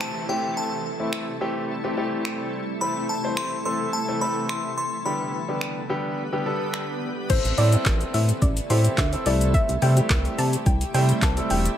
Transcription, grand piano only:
0.00 0.27 E3 medium
0.00 0.27 A3 medium
0.00 0.27 C4 medium
0.00 0.27 G4 medium
0.29 0.85 E3 medium
0.29 0.85 A3 medium
0.29 0.85 C4 medium
0.29 0.85 G4 medium
1.00 1.30 E3 medium
1.00 1.30 A3 medium
1.00 1.30 C4 medium
1.00 1.31 E4 medium
1.41 1.72 E3 medium
1.41 1.72 A3 medium
1.41 1.72 C4 medium
1.41 1.72 G4 medium
1.84 1.93 E3 medium
1.84 1.94 A3 medium
1.84 1.94 C4 medium
1.84 1.94 G4 medium
1.97 2.59 E3 medium
1.97 2.59 A3 medium
1.97 2.59 C4 medium
1.97 2.59 G4 medium
2.81 3.12 E3 medium
2.81 3.12 A3 medium
2.81 3.12 C4 medium
2.81 3.12 A4 medium
3.24 3.55 E3 medium
3.24 3.55 A3 medium
3.24 3.55 C4 medium
3.24 3.55 C5 medium
3.65 3.96 E3 medium
3.65 3.96 A3 medium
3.65 3.96 C4 medium
3.65 3.96 A4 medium
4.08 4.18 E3 medium
4.08 4.18 A3 medium
4.08 4.18 C4 medium
4.08 4.18 A4 medium
4.21 4.83 E3 medium
4.21 4.83 A3 medium
4.21 4.83 C4 medium
4.21 4.84 A4 medium
5.05 5.36 D3 medium
5.05 5.36 G3 medium
5.05 5.37 B3 medium
5.05 5.37 G4 medium
5.48 5.79 D3 medium
5.48 5.79 G3 medium
5.48 5.79 B3 medium
5.48 5.79 G4 medium
5.89 6.20 D3 medium
5.89 6.21 G3 medium
5.89 6.21 B3 medium
5.89 6.21 G4 medium
6.32 6.42 D3 medium
6.32 6.42 G3 medium
6.32 6.42 B3 medium
6.32 6.42 G4 medium
6.46 7.08 D3 medium
6.46 7.08 G3 medium
6.46 7.08 B3 medium
6.46 7.08 A4 loud
7.30 7.51 C4 medium
7.30 7.51 E4 medium
7.30 7.51 A4 medium
7.58 7.69 C4 medium
7.58 7.69 E4 medium
7.58 7.69 A4 medium
7.73 8.44 C4 medium
7.73 8.44 E4 medium
7.73 8.44 A4 medium
8.70 9.01 C4 medium
8.70 9.01 E4 medium
8.70 9.01 G4 medium
9.13 9.25 C4 medium
9.13 9.25 E4 medium
9.13 9.25 A4 medium
9.26 9.71 G3 medium
9.26 9.72 A3 medium
9.26 9.72 C4 medium
9.26 9.72 E4 medium
9.26 9.72 A4 medium
9.82 9.93 G3 medium
9.82 9.93 A3 medium
9.82 9.93 C4 medium
9.82 9.93 E4 medium
9.82 9.93 A4 medium
9.97 10.68 G3 medium
9.97 10.68 A3 medium
9.97 10.68 C4 medium
9.97 10.68 E4 medium
9.97 10.68 G4 medium
10.94 11.25 G3 medium
10.94 11.25 A3 medium
10.94 11.25 C4 medium
10.94 11.25 E4 medium
10.94 11.25 C5 medium
11.37 11.68 G3 medium
11.37 11.68 A3 medium
11.37 11.68 C4 medium
11.37 11.68 E4 medium
11.37 11.68 A4 medium

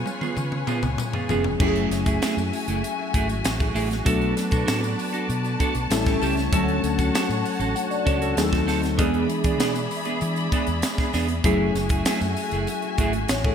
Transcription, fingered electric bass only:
0.37 0.63 C#3 loud
0.83 0.96 C#2 loud
1.29 1.55 F1 medium
1.60 1.86 F#1 loud
1.91 2.16 F#1 loud
2.37 2.50 F#2 medium
2.68 2.81 F#1 medium
3.14 3.40 G#1 medium
3.44 3.70 A1 medium
3.75 4.01 A1 loud
4.06 4.32 B1 loud
4.52 4.65 B2 medium
4.68 4.94 A2 medium
5.29 5.55 B2 loud
5.75 5.88 B1 medium
5.90 6.16 A1 medium
6.22 6.47 C#2 medium
6.52 6.78 D2 loud
6.83 7.09 D2 loud
7.29 7.42 A2 medium
7.59 7.72 A1 medium
8.07 8.32 C#2 medium
8.37 8.68 D#2 loud
8.68 8.99 D2 medium
8.99 9.24 E2 loud
9.44 9.60 E3 medium
9.60 9.86 B2 medium
10.22 10.47 E3 loud
10.68 10.80 E2 medium
11.14 11.39 E2 medium
11.44 11.70 F#1 loud
11.75 12.01 F#1 loud
12.21 12.34 F#2 medium
12.52 12.65 F#1 medium
12.98 13.24 G#1 loud
13.29 13.55 A1 medium

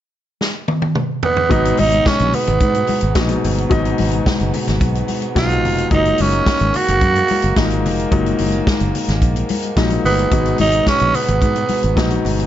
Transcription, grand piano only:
1.49 2.19 B2 medium
1.49 2.19 F#3 medium
1.49 2.19 G#3 medium
1.49 2.19 D#4 loud
3.16 3.50 B2 medium
3.16 3.50 F#3 medium
3.16 3.50 G#3 medium
3.16 3.50 D#4 medium
3.70 4.39 B2 medium
3.70 4.39 F#3 medium
3.70 4.39 G#3 medium
3.70 4.40 D#4 loud
5.35 5.70 B2 medium
5.35 5.70 F#3 medium
5.35 5.70 G#3 soft
5.35 5.71 D#4 medium
5.90 6.59 A#2 medium
5.90 6.59 F#3 medium
5.90 6.60 G#3 medium
5.90 6.60 D#4 medium
7.56 7.91 A#2 medium
7.56 7.91 F#3 medium
7.56 7.91 G#3 medium
7.56 7.91 D#4 medium
8.11 8.80 A#2 medium
8.11 8.80 F#3 medium
8.11 8.80 G#3 medium
8.11 8.80 D#4 medium
9.76 10.11 A#2 medium
9.76 10.11 F#3 medium
9.76 10.11 G#3 medium
9.76 10.11 D#4 medium
10.31 11.00 B2 medium
10.31 11.00 F#3 medium
10.31 11.01 G#3 medium
10.31 11.01 D#4 medium
11.96 12.31 B2 medium
11.96 12.31 F#3 medium
11.96 12.32 G#3 medium
11.96 12.32 D#4 medium

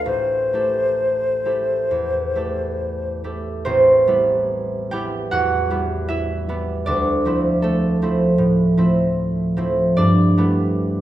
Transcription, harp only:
0.00 0.10 D2 soft
0.00 0.52 A3 soft
0.00 0.10 F4 soft
0.00 0.53 A4 soft
0.00 0.11 B4 soft
0.00 0.11 D5 soft
0.06 3.65 A1 soft
0.53 1.44 A3 soft
0.53 1.44 E4 soft
0.53 1.45 G4 soft
0.53 1.45 A4 soft
1.45 2.34 A3 soft
1.45 2.35 E4 soft
1.45 2.36 G4 soft
1.45 2.36 A4 soft
1.91 3.71 E2 soft
2.35 3.23 A3 soft
2.35 3.23 E4 soft
2.35 3.23 G4 soft
2.35 3.24 A4 soft
3.24 7.14 A3 soft
3.24 4.07 E4 soft
3.24 4.91 G4 soft
3.24 7.15 A4 soft
3.65 6.90 A1 medium
3.65 7.25 C4 medium
3.65 7.55 C5 medium
4.07 4.91 G3 soft
4.07 4.92 B3 soft
4.07 4.92 E4 soft
4.91 5.69 G3 soft
4.91 5.70 B3 soft
4.91 5.70 E4 soft
4.91 6.91 G4 medium
4.91 6.90 G5 medium
5.31 6.91 E2 soft
5.31 6.91 F#4 medium
5.31 6.65 F#5 medium
5.70 6.47 G3 soft
5.70 6.48 B3 soft
5.70 6.08 E4 soft
6.08 6.48 E4 medium
6.08 9.98 E5 medium
6.49 6.90 G3 soft
6.49 6.91 B3 soft
6.49 7.26 E4 soft
6.86 10.01 D2 medium
6.86 9.97 D4 medium
6.86 9.95 D5 medium
7.25 8.01 F3 soft
7.25 7.62 A3 soft
7.25 8.02 C4 soft
7.25 8.02 E4 soft
7.62 8.01 A3 soft
7.62 11.01 A4 medium
8.02 8.76 F3 soft
8.02 8.77 A3 soft
8.02 8.77 C4 soft
8.02 8.77 E4 soft
8.38 10.00 A2 soft
8.77 9.56 F3 soft
8.77 9.56 A3 soft
8.77 9.57 C4 soft
8.77 9.57 E4 soft
9.57 10.01 F3 soft
9.57 10.37 A3 soft
9.57 10.02 C4 soft
9.57 10.37 E4 soft
9.97 11.01 G2 soft
9.97 11.01 D4 medium
9.97 11.01 D5 medium
10.37 11.01 G3 soft
10.37 11.01 A3 soft
10.37 11.01 B3 soft
10.37 11.01 E4 soft

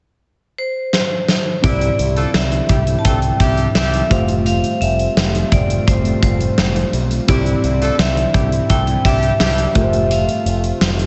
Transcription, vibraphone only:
0.58 1.67 C5 medium
1.64 2.36 D5 medium
2.35 3.00 E5 medium
2.99 3.05 A5 medium
3.05 3.41 G5 loud
3.40 3.56 E5 medium
3.75 4.12 E5 medium
4.11 4.27 F5 medium
4.46 4.82 F5 loud
4.81 5.54 E5 medium
5.52 5.88 D5 medium
5.87 6.21 C5 medium
6.23 6.89 C5 medium
7.29 7.95 D5 medium
7.99 8.72 E5 medium
8.70 9.06 G5 loud
9.06 9.75 E5 loud
9.77 10.12 E5 medium
10.12 10.78 F5 medium

